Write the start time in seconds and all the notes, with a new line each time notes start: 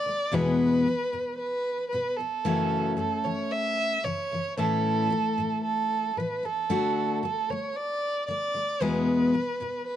Already playing: D5
0.06 D3 A3
0.32 E2 B2 E3 G#3 B3 G#4 B4
0.87 B2 E3
1.13 E2 B2 E3
1.38 B4
1.90 E2 B2 B4
1.95 E3
2.17 E2 B2 E3 A4
2.45 F#2 C#3 E3 A3 C#4 F#4
2.97 F#2 C#3 E3 A4
3.24 F#2 C#3 E3 C#5
3.52 E5
4.03 F#2 C#3 E3 C#5
4.31 F#2 C#3 E3
4.57 A2 E3 A3 C#4 E4 A4
5.12 E3
5.38 A2 E3
5.64 A4
6.17 A2 E3 B4
6.43 A2 E3 A4
6.70 D3 A3 D4 F#4
7.23 D3 A3 A4
7.50 D3 A3 C#5
7.76 D5
8.28 D3 A3 D5
8.54 D3 A3
8.81 E2 B2 E3 G#3 B3 G#4 B4
9.33 E2 B2 E3
9.60 E2 B2 E3
9.87 B4